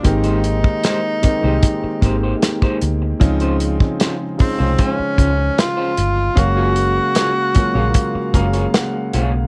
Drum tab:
HH |xxx-x-x-x-x-x-x-|xxx-x-o-x-x-x-x-|x-x-x-x-x-xxx-x-|
SD |----o-------o---|----o-------o---|----o-------o---|
BD |o--o--o-o-o--o--|o--o--o-o-o-----|o-----o-o-o-----|